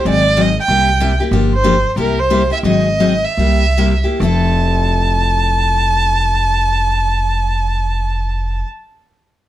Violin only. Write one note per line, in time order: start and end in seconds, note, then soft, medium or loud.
0.09 0.43 D5 medium
0.41 0.58 D#5 medium
0.60 1.17 G5 loud
1.55 1.95 C5 medium
1.99 2.21 A#4 medium
2.19 2.51 C5 medium
2.52 2.58 E5 medium
2.67 3.26 D#5 medium
3.25 4.05 E5 medium
4.23 8.60 A5 medium